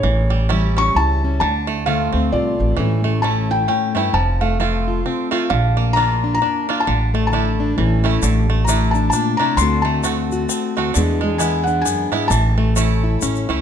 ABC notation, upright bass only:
X:1
M:3/4
L:1/8
Q:"Swing" 1/4=132
K:Aphr
V:1 name="Upright bass" clef=bass
A,,,4 ^C,,2 | D,,3 D,, C,, A,,, | A,,,4 z2 | F,,,4 z2 |
B,,,4 z2 | A,,,4 A,,,2 | A,,,4 z2 | D,,4 z2 |
E,,4 z2 | A,,,4 A,,, ^C,, |]